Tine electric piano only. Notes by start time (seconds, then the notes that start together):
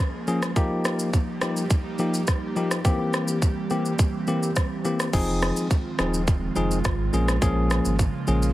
0.27 F3 A#3 C#4 G#4
0.56 F3 A#3 D#4 G4
1.42 F3 A#3 D#4 G4
1.99 F3 A#3 D#4 G4
2.56 F3 A#3 D#4 G4
2.85 E3 A#3 C4 G4
3.70 E3 A#3 C4 G4
4.27 E3 A#3 C4 G4
4.85 E3 A#3 C4 G4
5.13 F3 C4 D#4 G#4
5.99 F3 C4 D#4 G#4
6.56 F3 C4 D#4 G#4
7.13 F3 A#3 C#4 G#4
7.42 F3 A#3 C#4 G#4
8.27 F3 A#3 C#4 G#4